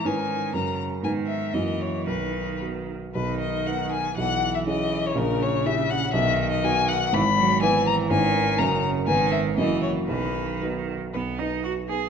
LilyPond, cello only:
\new Staff \with { instrumentName = "Cello" } { \clef bass \time 2/4 \key b \major \tempo 4 = 121 dis4 cis4 | dis4 e4 | dis4. r8 | dis2 |
e2 | cis2 | dis2 | e8 fis8 e4 |
dis4 cis4 | dis4 e4 | dis4. r8 | b8 dis'8 fis'8 gis'8 | }